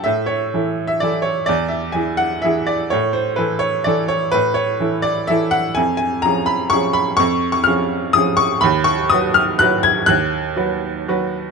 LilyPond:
\new Staff \with { instrumentName = "Upright piano" } { \time 3/4 \key a \mixolydian \tempo 4 = 125 << { e''8 cis''4~ cis''16 e''16 d''8 cis''8 | d''8 e''8 gis''8 fis''8 e''8 d''8 | cis''8 c''8 b'8 cis''8 d''8 cis''8 | b'8 cis''4 d''8 e''8 fis''8 |
\key b \lydian gis''8 gis''8 ais''8 b''8 cis'''8 b''8 | cis'''8. cis'''16 eis'''4 dis'''8 cis'''8 | b''8 cis'''8 dis'''8 eis'''8 fis'''8 gis'''8 | fis'''2. | } \\ { a,4 <e e' a'>4 <e e' a'>4 | e,4 <e e' gis'>4 <e e' gis'>4 | a,4 <e e' a'>4 <e e' a'>4 | a,4 <e e' a'>4 <e e' a'>4 |
eis,4 <eis cis' gis'>4 <eis cis' gis'>4 | eis,4 <eis cis' gis'>4 <eis cis' gis'>4 | dis,4 <fis fis' b'>4 <fis fis' b'>4 | dis,4 <fis fis' b'>4 <fis fis' b'>4 | } >> }